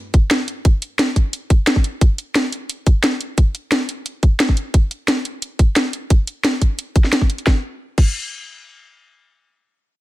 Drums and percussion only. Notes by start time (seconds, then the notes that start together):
0.14 kick, closed hi-hat
0.31 snare, closed hi-hat
0.48 closed hi-hat
0.65 kick, closed hi-hat
0.82 closed hi-hat
0.99 snare, closed hi-hat
1.16 kick, closed hi-hat
1.33 closed hi-hat
1.50 kick, closed hi-hat
1.67 snare, closed hi-hat
1.76 kick
1.84 closed hi-hat
2.01 kick, closed hi-hat
2.18 closed hi-hat
2.35 snare, closed hi-hat
2.52 closed hi-hat
2.69 closed hi-hat
2.87 kick, closed hi-hat
3.04 snare, closed hi-hat
3.21 closed hi-hat
3.38 kick, closed hi-hat
3.55 closed hi-hat
3.72 snare, closed hi-hat
3.89 closed hi-hat
4.06 closed hi-hat
4.23 kick, closed hi-hat
4.40 snare, closed hi-hat
4.49 kick
4.57 closed hi-hat
4.74 kick, closed hi-hat
4.91 closed hi-hat
5.08 snare, closed hi-hat
5.25 closed hi-hat
5.42 closed hi-hat
5.59 kick, closed hi-hat
5.76 snare, closed hi-hat
5.93 closed hi-hat
6.10 kick, closed hi-hat
6.27 closed hi-hat
6.44 snare, closed hi-hat
6.62 kick, closed hi-hat
6.79 closed hi-hat
6.96 kick, closed hi-hat
7.04 snare
7.13 snare, closed hi-hat
7.21 kick
7.30 closed hi-hat
7.38 closed hi-hat
7.47 kick, snare
7.98 kick, crash